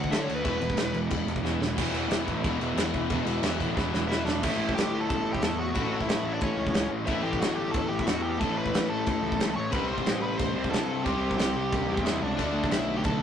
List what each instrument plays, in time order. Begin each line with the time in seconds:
Already playing: overdriven electric guitar D3 A3 D4, distorted electric guitar A3
0.00 lead electric guitar F#5, kick
0.10 overdriven electric guitar D3 A3 D4, picked electric bass D3, distorted electric guitar D3 A3 D4, lead electric guitar E5, snare, crash
0.22 lead electric guitar C#5
0.27 picked electric bass D2, overdriven electric guitar D3 A3 D4, distorted electric guitar D3 A3, crash
0.34 lead electric guitar B4
0.43 picked electric bass E1, overdriven electric guitar E2 B2 E3, distorted electric guitar E3 G#3 B3, kick, crash
0.61 picked electric bass E1, overdriven electric guitar E2 B2, distorted electric guitar E3 G#3, crash
0.70 kick
0.77 picked electric bass E1, overdriven electric guitar E2 B2, distorted electric guitar E3 G#3, snare, crash
0.94 picked electric bass E1, overdriven electric guitar E2 B2, distorted electric guitar E3 G#3, crash
1.10 picked electric bass E1, overdriven electric guitar E2 B2, distorted electric guitar E3 G#3, kick, crash
1.25 picked electric bass E1, overdriven electric guitar E2 B2, distorted electric guitar E3 G#3, crash
1.36 kick
1.41 picked electric bass E2, overdriven electric guitar E2 B2 E3, distorted electric guitar E3 G#3 B3, snare
1.59 picked electric bass E1, overdriven electric guitar E2 B2 E3, distorted electric guitar E3 G#3, snare
1.65 overdriven electric guitar E2
1.75 picked electric bass E1, overdriven electric guitar E2 B2 E3, distorted electric guitar E3 G#3 B3 E4, kick, crash
1.92 picked electric bass E1, overdriven electric guitar E2 B2 E3, distorted electric guitar E3 G#3 B3 E4, crash
2.08 picked electric bass E1, overdriven electric guitar E2 B2 E3, distorted electric guitar E3 G#3 B3 E4, snare, crash
2.25 picked electric bass A1, overdriven electric guitar E2 B2 E3, distorted electric guitar E3 G#3 B3 E4, kick, crash
2.42 picked electric bass E1, overdriven electric guitar E2 B2 E3, distorted electric guitar E3 G#3 B3 E4, kick, crash
2.48 overdriven electric guitar E3
2.58 picked electric bass E1, overdriven electric guitar E2 B2 E3, distorted electric guitar G#3 B3 E4, crash
2.62 distorted electric guitar E3
2.75 picked electric bass E1, overdriven electric guitar E2 B2 E3, distorted electric guitar E3 G#3 B3 E4, snare, crash
2.93 picked electric bass E1, overdriven electric guitar E2 B2 E3, distorted electric guitar E3 G#3 B3 E4, kick, crash
3.09 picked electric bass E1, overdriven electric guitar E2 B2 E3, distorted electric guitar E3 G#3 B3, kick, crash
3.13 distorted electric guitar E4
3.25 picked electric bass E1, overdriven electric guitar E2 B2 E3, distorted electric guitar E4, crash
3.29 distorted electric guitar E3 G#3 B3
3.42 picked electric bass E1, overdriven electric guitar E2 B2 E3, distorted electric guitar E3 G#3 B3 E4, snare, crash
3.59 picked electric bass A1, overdriven electric guitar E2 B2 E3, distorted electric guitar E3 G#3 B3 E4, kick, crash
3.76 picked electric bass E1, overdriven electric guitar E2 B2 E3, distorted electric guitar E3 G#3 B3 E4, kick, snare
3.92 picked electric bass E1, overdriven electric guitar E2 B2 E3, distorted electric guitar E3 G#3 B3 E4, snare
4.07 picked electric bass E1, overdriven electric guitar E2 B2 E3, distorted electric guitar E3 G#3 B3 E4, lead electric guitar E4 E5
4.12 snare
4.24 picked electric bass E1, overdriven electric guitar E2 B2 E3, distorted electric guitar E3 G#3 B3 E4, lead electric guitar D4 D5
4.28 snare
4.41 picked electric bass A1, overdriven electric guitar A2 E3 A3, lead electric guitar E4 E5, kick, crash
4.58 picked electric bass A1
4.69 kick
4.74 picked electric bass G1, lead electric guitar G4 G5
4.78 snare, crash
5.01 lead electric guitar A4 A5
5.09 picked electric bass G1, lead electric guitar A4 A5, kick, crash
5.25 picked electric bass A1
5.33 lead electric guitar G4 G5, kick
5.42 picked electric bass E2, lead electric guitar A4 A5, snare, crash
5.60 lead electric guitar F#4 F#5
5.73 picked electric bass A1, overdriven electric guitar A2 E3 A3, kick, crash
6.01 lead electric guitar E4 E5, kick
6.07 picked electric bass A1, lead electric guitar E4 E5, snare, crash
6.24 picked electric bass A1
6.33 lead electric guitar D4 D5
6.41 picked electric bass A1, lead electric guitar C#4 C#5, kick, crash
6.57 picked electric bass C#2
6.67 kick
6.73 picked electric bass C#2, snare, crash
6.89 picked electric bass A1
7.05 picked electric bass A1, overdriven electric guitar A2 E3 A3, lead electric guitar E4 E5, kick, crash
7.23 picked electric bass A1, lead electric guitar G4 G5
7.33 kick
7.40 picked electric bass G1, lead electric guitar F#4 F#5, snare, crash
7.55 lead electric guitar G4 G5
7.72 picked electric bass G1, lead electric guitar A4 A5, kick, crash
7.88 picked electric bass A1, lead electric guitar G4 G5
7.99 lead electric guitar E5, kick
8.06 picked electric bass E2, lead electric guitar F#4 F#5, snare, crash
8.22 lead electric guitar G4 G5
8.39 picked electric bass A1, overdriven electric guitar A2 E3 A3, lead electric guitar A4 A5, kick, crash
8.57 lead electric guitar B4 B5
8.66 kick
8.73 picked electric bass A1, snare, crash
8.88 picked electric bass A1, lead electric guitar A4 A5
9.06 picked electric bass A1, kick, crash
9.23 picked electric bass C#2
9.32 kick
9.39 picked electric bass C#2, snare, crash
9.56 picked electric bass A1, lead electric guitar C#5 C#6
9.70 picked electric bass C2, overdriven electric guitar C3 G3, distorted electric guitar C3, lead electric guitar B4 B5, kick, crash
9.74 distorted electric guitar G3 C4 E4, overdriven electric guitar C4
9.87 picked electric bass C2, lead electric guitar C5 C6
9.98 kick
10.06 picked electric bass A1, snare, crash
10.21 lead electric guitar B4 B5
10.37 picked electric bass A1, lead electric guitar C5 C6, kick, crash
10.56 picked electric bass C2, distorted electric guitar C3 G3 C4 E4
10.64 kick
10.70 picked electric bass G2, distorted electric guitar C3 G3, lead electric guitar A4 A5, crash
10.74 distorted electric guitar C4 E4, snare
11.03 picked electric bass C2, overdriven electric guitar C3 G3, distorted electric guitar C3 G3, lead electric guitar G4 G5, kick, crash
11.08 distorted electric guitar C4 E4, overdriven electric guitar C4
11.31 kick
11.38 picked electric bass C2, lead electric guitar G4 G5, snare, crash
11.56 picked electric bass C2
11.72 picked electric bass C2, kick, crash
11.86 picked electric bass E2, distorted electric guitar C4 E4
11.91 distorted electric guitar C3 G3
11.97 kick
12.03 picked electric bass E2, distorted electric guitar C3 G3 C4 E4, lead electric guitar E4 E5, snare, crash
12.21 picked electric bass C#2, lead electric guitar D4 D5
12.36 picked electric bass D2, overdriven electric guitar D3 A3 D4, distorted electric guitar D3 F#3, kick, crash
12.40 distorted electric guitar A3 D4
12.52 picked electric bass D2
12.64 kick
12.70 picked electric bass B1, lead electric guitar E4 E5, snare, crash
12.96 lead electric guitar G4 G5
13.03 picked electric bass B1, lead electric guitar A4 A5, kick, crash